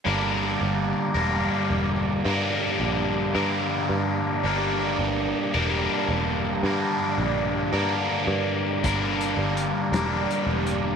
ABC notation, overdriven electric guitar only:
X:1
M:6/8
L:1/8
Q:3/8=55
K:Gdor
V:1 name="Overdriven electric guitar" clef=bass
[G,,D,G,B,DB]3 [G,,D,G,B,DB]3 | [G,,D,G,B,DB]3 [G,,D,G,B,DB]3 | [G,,D,G,B,DB]3 [G,,D,G,B,DB]3 | [G,,D,G,B,DB]3 [G,,D,G,B,DB]3 |
[G,,D,G,B,DB]3 [G,,D,G,B,DB]3 |]